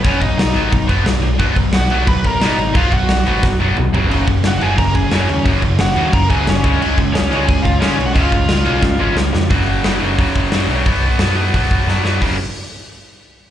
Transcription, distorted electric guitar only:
X:1
M:4/4
L:1/8
Q:1/4=177
K:C#mix
V:1 name="Distorted electric guitar" clef=bass
[B,,F,B,] [B,,F,] [B,,F,] [B,,F,B,] [B,,F,] [B,,F,B,] [B,,F,] [B,,F,] | [B,,F,B,] [B,,F,] [B,,F,] [B,,F,B,] [B,,F,] [B,,F,] [B,,F,B,] [B,,F,] | [B,,F,B,] [B,,F,] [B,,F,] [B,,F,B,] [B,,F,] [B,,F,B,] [B,,F,] [F,,C,F,] | [F,,C,F,] [F,,C,] [F,,C,] [F,,C,F,] [F,,C,] [F,,C,] [F,,C,F,] [F,,C,] |
[F,,C,F,] [F,,C,] [F,,C,] [F,,C,F,] [F,,C,] [F,,C,F,] [F,,C,] [C,G,C] | [C,G,C] [C,G,] [C,G,] [C,G,C] [C,G,] [C,G,] [C,G,C] [C,G,] | [C,G,C] [C,G,] [C,G,] [C,G,C] [C,G,] [C,G,C] [C,G,] [C,G,] | [K:B] [F,,C,F,]2 [F,,C,F,] [F,,C,F,] [F,,C,F,]2 [F,,C,F,] [F,,C,F,] |
[B,,F,B,]2 [B,,F,B,] [B,,F,B,] [B,,F,B,]2 [B,,F,B,] [B,,F,B,] | [F,,C,F,] z6 z |]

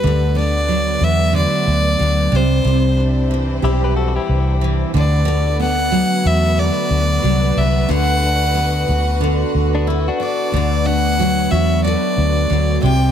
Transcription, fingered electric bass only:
X:1
M:4/4
L:1/16
Q:"Swing 16ths" 1/4=91
K:Dmix
V:1 name="Fingered electric bass" clef=bass
D,,6 E,,3 z D,,2 D,,2 C,,2 | C,,6 B,,,4 C,,4 D,,2- | D,,6 E,,3 z D,,2 C,,2 C,,2 | D,,6 D,,4 D,,4 z2 |
D,,6 E,,3 z D,,2 D,,2 C,,2 |]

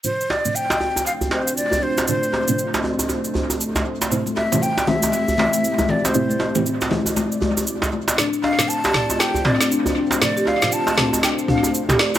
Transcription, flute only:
X:1
M:4/4
L:1/16
Q:"Swing 16ths" 1/4=118
K:Dm
V:1 name="Flute"
c2 d2 g4 f2 c2 d2 c2 | c6 z8 z2 | z2 e2 g2 e8 d c- | c4- c z8 z3 |
d2 f2 a4 g2 d2 z4 | d2 f2 a4 g2 f2 z4 |]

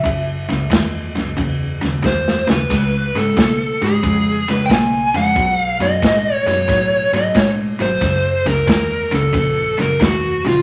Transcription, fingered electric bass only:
X:1
M:4/4
L:1/8
Q:"Swing" 1/4=90
K:F#mix
V:1 name="Fingered electric bass" clef=bass
F,,, C,, E,, C,, E,, D,, E,, D,, | C,, G,, B,, G,, ^E,,2 B,,, E,, | B,,, F,, =A,, F,, A,, G,, A,, G,,, | F,,, C,, E,, C,, A,,,2 E,,, A,,, |]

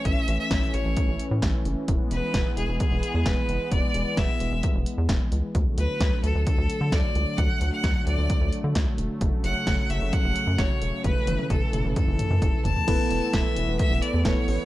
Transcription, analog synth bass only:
X:1
M:4/4
L:1/16
Q:1/4=131
K:Emix
V:1 name="Analog synth bass" clef=bass
A,,, z A,,, z A,,, z A,,, A,,, z A,,, z A,, A,,, z F,,, z | E,,, z E,,, z E,,, z E,,, E,,, z E,,, z E,, E,,, z F,,, z | E,,, z E,,, z E,,, z E,,, E,,, z E,,, z E,, E,,, z C,, z | D,, z D,, z D,, z D,, D,, z D,, z D, D,, z C,, z |
D,, z D,, z D,, z D,, D,, z D,, z D, D,, z E,,, z | F,,, z F,,, z F,,, z F,,, F,,, z F,,, z F,, F,,, z E,,, z | F,,, z F,,, z F,,, z F,,, F,,, z F,,, z F,, F,,, z F,,, z | E,,, z E,,, z E,,, z E,,, E,,, z E,,, z E,, E,,, z A,,, z |]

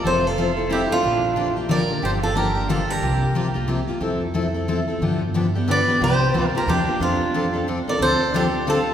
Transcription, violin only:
X:1
M:3/4
L:1/8
Q:"Swing" 1/4=181
K:F
V:1 name="Violin"
A F3 E D- | D3 z B2 | G F G2 F G- | G3 z3 |
z6 | z4 =B2 | G3 G D2 | D4 z B |
[K:Dm] A2 D2 F2 |]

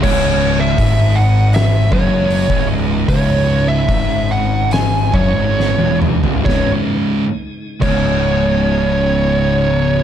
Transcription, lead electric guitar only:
X:1
M:4/4
L:1/16
Q:1/4=72
K:C#m
V:1 name="Lead electric guitar"
c3 e3 f2 e2 c4 z2 | c3 e3 f2 g2 c4 z2 | c z4 z c8- c2 |]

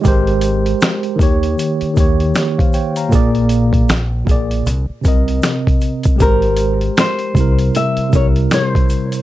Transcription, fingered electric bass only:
X:1
M:4/4
L:1/16
Q:"Swing 16ths" 1/4=78
K:Ab
V:1 name="Fingered electric bass" clef=bass
A,,,4 z2 E,,2 z2 E,,2 z4 | B,,,4 B,,,2 B,,,2 C,, z C,,2 z4 | A,,,4 z2 C,,2 z2 C,,2 z4 |]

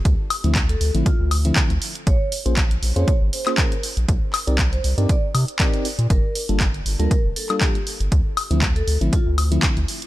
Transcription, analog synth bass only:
X:1
M:4/4
L:1/16
Q:"Swing 16ths" 1/4=119
K:Dphr
V:1 name="Analog synth bass" clef=bass
D,, z2 D,,3 D,, A,,, z D,,3 z D,, z2 | B,,, z2 B,,,3 B,,, F,, z _A,,, z4 z B,,, | C,, z2 C,,3 C,, G,, z2 C, z4 B,, | G,,, z2 G,,,3 G,,, D,, z F,,, z4 z G,,, |
D,, z2 D,,3 D,, A,,, z D,,3 z D,, z2 |]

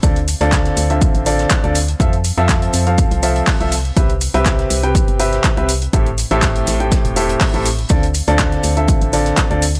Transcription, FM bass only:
X:1
M:4/4
L:1/16
Q:"Swing 16ths" 1/4=122
K:Ddor
V:1 name="FM bass" clef=bass
D,,3 D,,3 D,,3 A,,,3 z D,,3 | F,,3 F,,3 F,,3 C,,3 z C,,3 | C,,3 C,,3 C,,3 G,,,3 z C,,3 | A,,,3 A,,,3 A,,,3 E,,,3 z A,,,3 |
D,,3 D,,3 D,,3 A,,,3 z D,,3 |]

